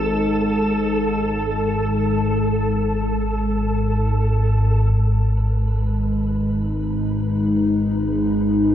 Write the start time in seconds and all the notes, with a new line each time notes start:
Already playing: G#1 G#2 A4
4.94 G#1 G#2 G#3 B4
6.23 D#4
7.93 G#4